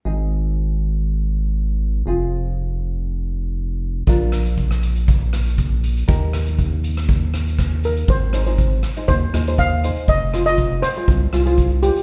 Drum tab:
HH |----------------|----------------|x-xxx-xxx-xxx-xx|x-xxx-xxx-xxx-xx|
SD |----------------|----------------|--r--r----r-----|--r----r--r-r---|
BD |----------------|----------------|o---o---o---o---|o---o---o---o---|

HH |x-xxx-xxx-xxx-xx|x-xxx-xxx-xxx-xx|
SD |--r---r---r-----|--r---r---r-----|
BD |o---o---o---o---|o---o---o---o---|